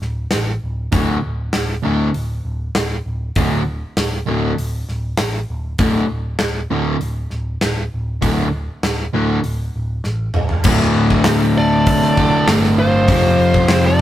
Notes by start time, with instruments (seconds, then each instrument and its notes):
0.02 picked electric bass D1, snare
0.31 picked electric bass A1, snare, open hi-hat
0.64 picked electric bass D1
0.92 picked electric bass D1, distorted electric guitar D2 A2 D3, kick, open hi-hat
1.26 picked electric bass D1
1.53 picked electric bass D1, snare, open hi-hat
1.82 distorted electric guitar D2 A2 D3
1.87 picked electric bass D1
2.14 picked electric bass D1, open hi-hat
2.45 picked electric bass D1
2.75 picked electric bass D1, snare, open hi-hat
3.06 picked electric bass D1
3.35 picked electric bass D1, distorted electric guitar D2 A2 D3, kick, open hi-hat
3.97 picked electric bass D1, snare, open hi-hat
4.26 picked electric bass D1, distorted electric guitar D2 A2 D3
4.58 picked electric bass D1, open hi-hat
4.89 picked electric bass D1, snare
5.17 picked electric bass A1, snare, open hi-hat
5.50 picked electric bass D1
5.78 picked electric bass D1, distorted electric guitar D2 A2 D3, kick, open hi-hat
6.11 picked electric bass D1
6.39 picked electric bass D1, snare, open hi-hat
6.71 picked electric bass D1, distorted electric guitar D2 A2 D3
7.01 picked electric bass D1, open hi-hat
7.30 picked electric bass D1, snare
7.61 picked electric bass D1, snare, open hi-hat
7.94 picked electric bass D1
8.22 picked electric bass D1, distorted electric guitar D2 A2 D3, kick, open hi-hat
8.83 picked electric bass D1, snare, open hi-hat
9.13 picked electric bass D1, distorted electric guitar D2 A2 D3
9.44 picked electric bass D1, open hi-hat
9.76 picked electric bass D1
10.04 picked electric bass A1, snare
10.34 picked electric bass D1, mid tom
10.49 floor tom
10.64 picked electric bass D1, distorted electric guitar D2 A2, tonewheel organ E5, kick, crash
10.68 distorted electric guitar D3, tonewheel organ D4 A4
10.97 picked electric bass D1
11.10 kick
11.24 picked electric bass D1, snare, open hi-hat
11.56 picked electric bass D1, lead electric guitar A4 D5
11.86 picked electric bass C2, kick, open hi-hat
12.02 snare
12.17 distorted electric guitar A2 D3, kick
12.21 distorted electric guitar D2
12.48 picked electric bass G1, distorted electric guitar D2 A2, snare, open hi-hat
12.53 distorted electric guitar D3
12.64 snare
12.78 lead electric guitar F4 C5
13.08 picked electric bass F1, distorted electric guitar F2 C3, tonewheel organ F3 C4 G4, kick, open hi-hat
13.12 distorted electric guitar F3
13.38 picked electric bass F1
13.54 kick
13.68 picked electric bass F1, lead electric guitar F4 C5, snare, open hi-hat
13.85 lead electric guitar A4 D5